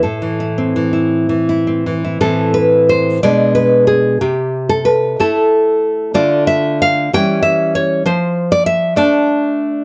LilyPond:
\new Staff \with { instrumentName = "Nylon-string guitar" } { \time 6/8 \key a \minor \tempo 4. = 62 << { a'4. r4. | a'8 b'8 c''8 d''8 b'8 gis'8 | g'8. a'16 b'8 a'4. | d''8 e''8 f''8 g''8 e''8 cis''8 |
c''8. d''16 e''8 d''4. | } \\ { a,16 e16 e'16 c'16 e16 e'8 e16 e'16 c'16 e16 e'16 | <a, e c'>4. <b, gis d'>4. | c4. <a e'>4. | <d a f'>4. <e g cis'>4. |
f4. <a d'>4. | } >> }